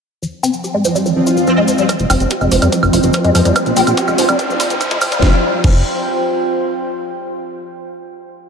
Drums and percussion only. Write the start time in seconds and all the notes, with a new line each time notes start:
0.23 cabasa
0.44 cabasa
0.53 cabasa
0.64 cabasa
0.85 cabasa
0.96 cabasa
1.06 cabasa
1.27 cabasa
1.37 cabasa
1.47 cabasa
1.68 cabasa
1.78 cabasa
1.89 kick, closed hi-hat, cabasa, high woodblock
1.99 closed hi-hat, cabasa
2.10 open hi-hat, cabasa, high woodblock
2.20 closed hi-hat, cabasa
2.30 kick, closed hi-hat, cabasa
2.41 cabasa, high woodblock
2.52 open hi-hat, cabasa
2.62 closed hi-hat, cabasa, high woodblock
2.72 kick, closed hi-hat, cabasa
2.83 cabasa, high woodblock
2.93 open hi-hat, cabasa
3.03 closed hi-hat, cabasa
3.13 kick, closed hi-hat, cabasa, high woodblock
3.24 closed hi-hat, cabasa
3.35 open hi-hat, cabasa, high woodblock
3.45 closed hi-hat, cabasa
3.56 kick, closed hi-hat, cabasa, high woodblock
3.66 closed hi-hat, cabasa
3.76 open hi-hat, cabasa
3.87 closed hi-hat, cabasa, high woodblock
3.97 kick, closed hi-hat, cabasa
4.08 cabasa, high woodblock
4.18 open hi-hat, cabasa
4.28 closed hi-hat, cabasa, high woodblock
4.39 kick, closed hi-hat, cabasa
4.50 cabasa
4.60 kick, open hi-hat, cabasa, high woodblock
4.70 closed hi-hat, cabasa
4.81 kick, closed hi-hat, cabasa, high woodblock
4.91 kick, closed hi-hat, cabasa
5.01 kick, open hi-hat, cabasa, high woodblock
5.12 kick, closed hi-hat, cabasa
5.22 kick, snare
5.64 kick, crash